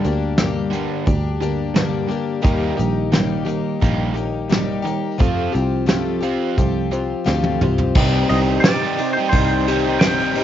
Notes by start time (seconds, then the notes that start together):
0.04 D2 G2 D3 G3 A#3 D4 G4, closed hi-hat
0.37 G2 D3 G3 A#3 D4 G4, snare, closed hi-hat
0.70 G2 D3 G3 A#3 D4 G4, closed hi-hat
0.75 G3
1.05 D2 G2 D3 G3 A#3 D4 G4, kick, closed hi-hat
1.40 G2 D3 G3 A#3 D4 G4, closed hi-hat
1.74 G2 D3 G3 A#3 D4 G4, snare, closed hi-hat
2.08 G2 D3 G3 A#3 D4 G4, closed hi-hat
2.42 D#2 D#3 G3 A#3 D#4 G4, kick, closed hi-hat
2.77 A#1 D#3 G3 A#3 D#4 G4, closed hi-hat
3.12 D#3 G3 A#3 D#4 G4, snare, closed hi-hat
3.45 D#3 G3 A#3 D#4 G4, closed hi-hat
3.80 A#1 D#3 G3 A#3 D#4 G4, kick, closed hi-hat
4.14 D#3 G3 A#3 D#4 G4, closed hi-hat
4.49 D#3 G3 A#3 D#4 G4, snare, closed hi-hat
4.82 D#3 G3 A#3 D#4 G4
4.86 closed hi-hat
5.18 F2 F3 A3 C4 F4 G4, kick, closed hi-hat
5.52 C2 F3 C4 F4 G4, closed hi-hat
5.86 F3 A3 C4 F4 G4, snare, closed hi-hat
6.21 F3 C4 F4 G4, closed hi-hat
6.56 C2 F3 A3 C4 F4 G4, kick, closed hi-hat
6.91 F3 C4 F4 G4, closed hi-hat
7.25 D2 F3 A3 C4 F4 G4, snare
7.44 high tom
7.61 C2 F3 C4 F4 G4, mid tom
7.78 floor tom
7.95 C2 C3 D#3 G3 C4 D#4 G4 C5 G5, kick, crash
8.29 C2 D#3 G3 C4 D#4 G4 D#5, ride
8.33 G4
8.60 G3 C4 D5, snare, ride
8.64 C3 D#3 G3 D#4 G4
8.83 G3 D#4 G4
8.97 C4 D#4 G4, ride
9.01 muted overdriven electric guitar stroke
9.13 C5
9.17 G3 D#4 G4
9.29 C3 G3 C4 D#4 G4 C5, kick, ride
9.33 C2
9.68 D#3 G3 C4 D#4 G4, ride
9.86 G3 D#4 G4
9.99 C3 D#3 G3 C4 D#4 G4 G5, snare, ride
10.04 G3 D#4 G4
10.21 G3 D#4 G4
10.34 D#3 C4 D#4 G4, ride
10.39 G3 D#4 G4